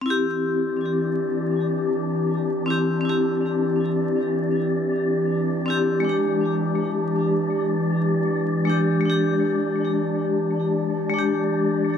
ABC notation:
X:1
M:4/4
L:1/16
Q:"Swing 16ths" 1/4=80
K:C
V:1 name="Synth texture"
[Dd]16- | [Dd]16- | [Dd]16- | [Dd]16 |]
V:2 name="Vibraphone"
[CEG]12- [CEG]2 [CEG]2 | [CEG]12- [CEG]2 [CEG]2 | [^G,D=G]12- [^G,D=G]2 [^G,D=G]2 | [^G,D=G]8- [^G,D=G]3 [^G,D=G]4- [^G,D=G] |]
V:3 name="Ambient pad"
[E,G]16- | [E,G]16- | [E,G]16- | [E,G]16 |]